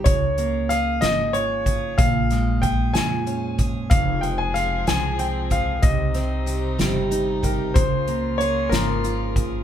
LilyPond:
<<
  \new Staff \with { instrumentName = "Grand piano" } { \time 6/8 \key des \lydian \tempo 4. = 62 des''4 f''8 ees''8 des''4 | f''4 g''8 aes''4 r8 | f''8 g''16 aes''16 f''8 aes''8 g''8 f''8 | ees''4. r4 bes'8 |
c''4 des''8 bes'4. | }
  \new Staff \with { instrumentName = "Steel-string acoustic guitar" } { \time 6/8 \key des \lydian des8 bes8 aes'8 f8 f'8 aes'8 | bes,8 aes8 aes'8 f8 des'8 aes'8 | f,8 aes8 aes'8 f8 c'8 aes'8 | c8 c'8 g'8 g8 ees'8 g'8 |
des8 bes8 aes'8 f8 f'8 aes'8 | }
  \new Staff \with { instrumentName = "String section" } { \time 6/8 \key des \lydian r2. | r2. | <f c' aes'>2. | <c g ees'>2. |
<des bes f'>2. | }
  \new Staff \with { instrumentName = "Upright bass" } { \clef bass \time 6/8 \key des \lydian des,4. aes,,4. | bes,,4. f,4. | f,,4. c,4. | c,4. g,,4. |
des,4. aes,,4. | }
  \new DrumStaff \with { instrumentName = "Drums" } \drummode { \time 6/8 <hh bd>8 hh8 <hh sn>8 <hh sn>8 hh8 <hh bd>8 | <hh bd>8 <hh sn>8 <hh bd>8 <hh sn>8 hh8 <hh bd>8 | <hh bd>8 hh8 <hh sn>8 <hh sn>8 hh8 <hh bd>8 | <hh bd>8 <hh sn>8 hh8 <hh sn>8 hh8 <hh bd>8 |
<hh bd>8 hh8 hh8 <hh sn>8 hh8 <hh bd>8 | }
>>